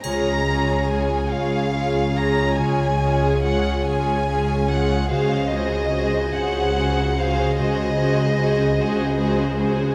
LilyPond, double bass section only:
\new Staff \with { instrumentName = "Double bass section" } { \clef bass \time 12/8 \key des \major \tempo 4. = 48 des,4. des,4. des,4. des,4. | des,4. des,4. des,4. des,4. | }